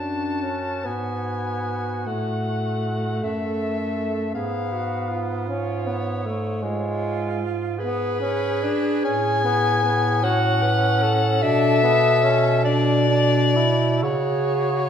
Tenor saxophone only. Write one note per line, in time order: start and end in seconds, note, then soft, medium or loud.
0.00 0.44 D4 soft
0.43 0.87 C#4 soft
0.85 2.08 B3 soft
2.07 4.34 A3 soft
4.34 5.46 B3 soft
5.49 5.88 C#4 soft
5.87 6.27 B3 soft
6.26 6.64 A3 medium
6.63 7.52 G#3 soft
7.80 8.18 B3 medium
8.20 8.64 C#4 medium
8.63 9.06 D4 medium
9.04 9.44 C#4 medium
9.44 9.83 B3 medium
9.84 10.25 B3 medium
10.24 11.44 C#4 medium
11.42 11.83 D4 medium
11.83 12.22 B3 medium
12.23 12.66 C#4 medium
12.64 13.08 D4 medium
13.09 13.57 D4 medium
13.56 14.05 E4 medium
14.03 14.89 F#4 medium